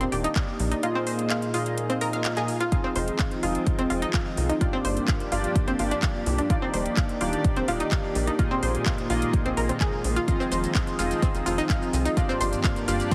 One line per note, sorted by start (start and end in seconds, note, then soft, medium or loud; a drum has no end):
0.01 0.08 D#1 medium
0.01 0.05 C4 loud
0.01 closed hi-hat soft
0.12 0.27 D#1 medium
0.12 0.80 D#3 medium
0.12 0.80 A#3 medium
0.12 0.80 D4 medium
0.12 0.80 D#4 medium
0.12 0.20 G4 medium
0.12 0.80 G4 medium
0.12 0.80 D5 medium
0.12 open hi-hat medium
0.24 0.35 D#4 loud
0.24 closed hi-hat medium
0.36 0.41 F5 medium
0.36 kick loud
0.36 clap loud
0.36 closed hi-hat medium
0.59 0.74 A#1 medium
0.59 open hi-hat loud
0.72 0.79 D#4 medium
0.72 closed hi-hat medium
0.83 1.51 A#2 medium
0.83 1.51 A#3 medium
0.83 1.51 D#4 medium
0.83 1.51 F4 medium
0.83 0.95 F4 medium
0.83 1.51 G#4 medium
0.83 1.51 D#5 loud
0.83 closed hi-hat medium
0.95 1.00 C4 loud
1.07 1.18 C5 medium
1.07 open hi-hat loud
1.19 closed hi-hat medium
1.30 1.35 F5 medium
1.30 clap loud
1.30 closed hi-hat medium
1.42 closed hi-hat soft
1.54 1.98 A#2 medium
1.54 1.98 A#3 medium
1.54 1.98 D#4 medium
1.54 1.98 F4 medium
1.54 1.62 F4 medium
1.54 1.98 G#4 medium
1.54 1.98 D#5 medium
1.54 open hi-hat loud
1.66 closed hi-hat medium
1.78 closed hi-hat medium
1.78 swell medium
1.90 1.94 C4 medium
1.90 closed hi-hat soft
2.01 2.34 A#2 medium
2.01 2.34 A#3 medium
2.01 2.34 D#4 medium
2.01 2.34 F4 medium
2.01 2.34 G#4 medium
2.01 2.06 A#4 loud
2.01 2.34 D#5 medium
2.01 open hi-hat loud
2.13 2.18 F5 medium
2.13 closed hi-hat medium
2.25 2.33 F5 medium
2.25 clap loud
2.25 closed hi-hat medium
2.36 2.48 A#2 medium
2.36 2.48 A#3 medium
2.36 2.48 D#4 medium
2.36 2.48 F4 medium
2.36 2.48 G#4 medium
2.36 2.48 G#4 loud
2.36 2.48 D#5 loud
2.36 clap soft
2.36 closed hi-hat soft
2.48 open hi-hat loud
2.60 2.71 F4 loud
2.60 closed hi-hat medium
2.72 4.59 D#3 medium
2.72 3.40 F3 medium
2.72 4.59 G#3 medium
2.72 4.59 C4 medium
2.72 3.40 C4 medium
2.72 3.40 D#4 medium
2.72 3.40 F4 medium
2.72 2.84 F4 medium
2.72 4.59 F4 medium
2.72 3.40 G#4 medium
2.72 3.40 D#5 medium
2.72 kick loud
2.72 closed hi-hat medium
2.84 2.89 C4 loud
2.96 3.10 F1 loud
2.96 3.07 C5 medium
2.96 open hi-hat loud
3.08 closed hi-hat medium
3.19 3.24 F5 medium
3.19 kick loud
3.19 clap loud
3.19 closed hi-hat medium
3.31 closed hi-hat soft
3.43 3.57 F1 medium
3.43 3.87 F3 medium
3.43 3.87 C4 medium
3.43 3.87 D#4 medium
3.43 3.51 F4 medium
3.43 3.87 F4 medium
3.43 3.87 G#4 medium
3.43 3.87 D#5 medium
3.43 open hi-hat loud
3.55 closed hi-hat medium
3.67 kick loud
3.67 closed hi-hat medium
3.79 3.86 F1 medium
3.79 3.83 C4 loud
3.79 closed hi-hat soft
3.90 4.05 F1 loud
3.90 4.58 F3 medium
3.90 4.58 C4 medium
3.90 4.58 D#4 medium
3.90 4.02 F4 medium
3.90 4.58 F4 medium
3.90 4.58 G#4 medium
3.90 4.58 D#5 medium
3.90 open hi-hat loud
4.02 4.13 D#4 loud
4.02 closed hi-hat medium
4.13 4.18 F5 medium
4.13 kick loud
4.13 clap loud
4.13 closed hi-hat medium
4.37 4.52 C2 medium
4.37 open hi-hat loud
4.49 4.57 D#4 medium
4.49 closed hi-hat medium
4.61 5.29 G2 medium
4.61 6.48 F3 medium
4.61 5.29 A#3 medium
4.61 6.48 A#3 medium
4.61 6.48 D4 medium
4.61 5.29 D4 medium
4.61 4.73 F4 medium
4.61 5.29 F4 medium
4.61 5.29 G4 medium
4.61 6.48 G4 medium
4.61 5.29 D5 loud
4.61 kick loud
4.61 closed hi-hat medium
4.73 4.78 C4 loud
4.85 4.99 G1 loud
4.85 4.96 C5 medium
4.85 open hi-hat loud
4.97 closed hi-hat soft
5.08 5.13 F5 medium
5.08 kick loud
5.08 clap loud
5.08 closed hi-hat medium
5.20 closed hi-hat soft
5.32 5.46 G1 medium
5.32 5.76 G2 medium
5.32 5.76 A#3 medium
5.32 5.76 D4 medium
5.32 5.40 F4 medium
5.32 5.76 F4 medium
5.32 5.76 G4 medium
5.32 5.76 D5 loud
5.32 open hi-hat loud
5.44 closed hi-hat medium
5.55 kick loud
5.55 closed hi-hat medium
5.68 5.75 G1 medium
5.68 5.72 C4 loud
5.68 closed hi-hat soft
5.79 5.94 G1 medium
5.79 6.47 G2 medium
5.79 6.47 A#3 medium
5.79 6.47 D4 medium
5.79 6.47 F4 medium
5.79 5.91 F4 medium
5.79 6.47 G4 medium
5.79 6.47 D5 medium
5.79 open hi-hat loud
5.91 6.02 D4 loud
5.91 closed hi-hat medium
6.02 6.08 F5 medium
6.02 kick loud
6.02 clap loud
6.02 closed hi-hat medium
6.26 6.41 C2 medium
6.26 open hi-hat loud
6.38 6.46 D4 medium
6.38 closed hi-hat medium
6.50 7.18 D#3 medium
6.50 8.37 D#3 medium
6.50 7.18 A#3 medium
6.50 10.24 A#3 medium
6.50 7.18 D4 medium
6.50 7.18 D#4 medium
6.50 6.62 F4 medium
6.50 7.18 G4 medium
6.50 8.37 G4 medium
6.50 7.18 D5 medium
6.50 8.37 D5 medium
6.50 kick loud
6.50 closed hi-hat medium
6.62 6.67 C4 loud
6.74 6.88 D#1 loud
6.74 6.85 C5 medium
6.74 open hi-hat loud
6.86 closed hi-hat medium
6.97 7.02 F5 medium
6.97 kick loud
6.97 clap loud
6.97 closed hi-hat medium
7.09 closed hi-hat soft
7.21 7.35 D#1 medium
7.21 7.65 D#3 medium
7.21 7.65 A#3 medium
7.21 7.65 D4 medium
7.21 7.65 D#4 medium
7.21 7.29 F4 medium
7.21 7.65 G4 medium
7.21 7.65 D5 medium
7.21 open hi-hat loud
7.33 closed hi-hat medium
7.44 kick loud
7.44 closed hi-hat medium
7.56 7.64 D#1 medium
7.56 7.61 C4 loud
7.56 closed hi-hat soft
7.68 7.83 D#1 medium
7.68 8.36 D#3 medium
7.68 8.36 A#3 medium
7.68 8.36 D4 medium
7.68 8.36 D#4 medium
7.68 7.80 F4 medium
7.68 8.36 G4 medium
7.68 8.36 D5 medium
7.68 open hi-hat loud
7.80 7.91 D#4 loud
7.80 closed hi-hat soft
7.91 7.96 F5 medium
7.91 kick loud
7.91 clap loud
7.91 closed hi-hat medium
8.15 8.30 A#1 medium
8.15 open hi-hat loud
8.27 8.35 D#4 medium
8.27 closed hi-hat medium
8.39 9.07 A#2 medium
8.39 12.13 D#3 medium
8.39 12.13 G#3 medium
8.39 9.07 A#3 medium
8.39 9.07 D#4 medium
8.39 9.07 F4 medium
8.39 8.50 F4 medium
8.39 12.13 F4 medium
8.39 9.07 G#4 medium
8.39 9.07 D#5 medium
8.39 kick loud
8.39 closed hi-hat medium
8.51 8.56 C4 loud
8.63 8.77 A#1 loud
8.63 8.74 C5 medium
8.63 open hi-hat loud
8.75 closed hi-hat soft
8.86 8.91 F5 medium
8.86 kick loud
8.86 clap loud
8.86 closed hi-hat medium
8.98 closed hi-hat soft
9.10 9.24 A#1 medium
9.10 9.54 A#2 medium
9.10 9.54 A#3 medium
9.10 9.54 D#4 medium
9.10 9.54 F4 medium
9.10 9.18 F4 medium
9.10 9.54 G#4 medium
9.10 9.54 D#5 medium
9.10 open hi-hat loud
9.22 closed hi-hat soft
9.33 kick loud
9.33 closed hi-hat medium
9.45 9.53 A#1 medium
9.45 9.50 C4 loud
9.45 closed hi-hat soft
9.57 9.72 A#1 medium
9.57 10.25 A#2 medium
9.57 10.25 A#3 medium
9.57 10.25 D#4 medium
9.57 10.25 F4 medium
9.57 10.25 G#4 medium
9.57 9.69 A#4 medium
9.57 10.25 D#5 medium
9.57 open hi-hat loud
9.69 9.74 C4 medium
9.69 closed hi-hat medium
9.81 9.92 G#4 loud
9.81 kick loud
9.81 clap loud
9.81 closed hi-hat medium
10.04 10.19 A#1 medium
10.04 open hi-hat loud
10.16 10.24 F4 loud
10.16 closed hi-hat soft
10.28 10.96 F3 medium
10.28 12.15 C4 medium
10.28 10.96 C4 medium
10.28 10.96 D#4 medium
10.28 10.96 F4 medium
10.28 10.39 F4 medium
10.28 10.96 G#4 medium
10.28 10.96 D#5 medium
10.28 kick loud
10.28 closed hi-hat medium
10.28 shaker soft
10.40 10.45 C4 loud
10.40 shaker soft
10.52 10.66 F1 loud
10.52 10.63 C5 medium
10.52 open hi-hat loud
10.52 shaker medium
10.64 closed hi-hat soft
10.64 shaker soft
10.75 10.80 F5 medium
10.75 kick loud
10.75 clap loud
10.75 closed hi-hat medium
10.75 shaker soft
10.87 closed hi-hat soft
10.87 shaker soft
10.99 11.13 F1 medium
10.99 11.43 F3 medium
10.99 11.43 C4 medium
10.99 11.43 D#4 medium
10.99 11.43 F4 medium
10.99 11.07 F4 medium
10.99 11.43 G#4 medium
10.99 11.43 D#5 medium
10.99 open hi-hat loud
10.99 shaker medium
11.11 closed hi-hat soft
11.11 shaker soft
11.22 11.27 C4 loud
11.22 kick loud
11.22 closed hi-hat medium
11.22 shaker soft
11.34 11.41 F1 medium
11.34 closed hi-hat soft
11.34 shaker soft
11.46 11.61 F1 medium
11.46 12.14 F3 medium
11.46 12.14 C4 medium
11.46 12.14 D#4 medium
11.46 11.58 F4 medium
11.46 12.14 F4 medium
11.46 12.14 G#4 medium
11.46 12.14 D#5 medium
11.46 open hi-hat loud
11.46 shaker medium
11.58 11.69 D#4 loud
11.58 closed hi-hat soft
11.58 shaker soft
11.69 11.74 F5 medium
11.69 kick loud
11.69 clap loud
11.69 closed hi-hat medium
11.69 shaker soft
11.82 shaker soft
11.93 12.08 C2 medium
11.93 open hi-hat loud
11.93 shaker medium
12.05 12.13 D#4 medium
12.05 closed hi-hat medium
12.05 shaker soft
12.17 12.85 G2 medium
12.17 13.15 F3 medium
12.17 13.15 A#3 medium
12.17 12.85 A#3 medium
12.17 12.85 D4 medium
12.17 12.85 F4 medium
12.17 12.28 F4 medium
12.17 13.15 G4 medium
12.17 12.85 G4 medium
12.17 12.85 D5 medium
12.17 13.15 D5 medium
12.17 kick loud
12.17 closed hi-hat medium
12.17 shaker soft
12.29 12.33 C4 loud
12.29 shaker soft
12.41 12.55 G1 loud
12.41 12.52 C5 medium
12.41 open hi-hat loud
12.41 shaker medium
12.53 closed hi-hat medium
12.53 shaker soft
12.64 12.69 F5 medium
12.64 kick loud
12.64 clap loud
12.64 closed hi-hat medium
12.64 shaker soft
12.76 closed hi-hat soft
12.76 shaker soft
12.88 13.02 G1 medium
12.88 13.15 G2 medium
12.88 13.15 A#3 medium
12.88 13.15 D4 medium
12.88 13.15 F4 medium
12.88 12.96 F4 medium
12.88 13.15 G4 medium
12.88 13.15 D5 loud
12.88 open hi-hat loud
12.88 shaker medium
13.00 closed hi-hat soft
13.00 shaker soft
13.11 13.15 C4 loud
13.11 kick loud
13.11 closed hi-hat medium